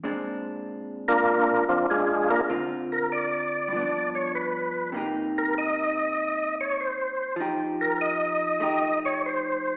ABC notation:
X:1
M:4/4
L:1/8
Q:"Swing" 1/4=98
K:Bbmix
V:1 name="Tonewheel organ"
z3 [B,DFB]2 [F,CDF] [A,DFA] [B,DFB] | z B d3 _d =B2 | z B e3 _d c2 | z B e3 _d c2 |]
V:2 name="Hollow-body jazz guitar"
[B,,A,CD]8 | [D,CF]4 [G,,F,=B,D]4 | [C,B,EG]8 | [F,EG]4 [=A,EG]4 |]